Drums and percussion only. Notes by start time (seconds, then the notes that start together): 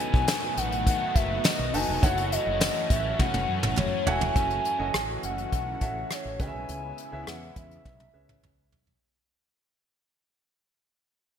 0.14 kick
0.28 snare, clap, closed hi-hat, tambourine
0.57 closed hi-hat
0.72 closed hi-hat
0.87 kick, closed hi-hat
1.15 kick, closed hi-hat
1.44 snare, clap, closed hi-hat, tambourine
1.74 open hi-hat
2.03 kick, closed hi-hat
2.17 closed hi-hat
2.32 closed hi-hat
2.61 snare, clap, closed hi-hat, tambourine
2.90 kick, closed hi-hat
3.19 kick, high tom
3.34 high tom
3.63 mid tom
3.77 clap, mid tom
4.07 floor tom
4.21 floor tom
4.36 kick, closed hi-hat
4.50 closed hi-hat
4.65 closed hi-hat
4.94 cross-stick, closed hi-hat
5.23 closed hi-hat
5.38 closed hi-hat
5.52 kick, closed hi-hat
5.81 kick, closed hi-hat
6.10 cross-stick, closed hi-hat
6.40 kick, closed hi-hat
6.69 closed hi-hat
6.98 closed hi-hat
7.27 cross-stick, closed hi-hat
7.56 kick, closed hi-hat
7.71 closed hi-hat
7.85 kick, high tom
8.00 high tom
8.29 mid tom
8.43 mid tom
8.72 floor tom
8.87 floor tom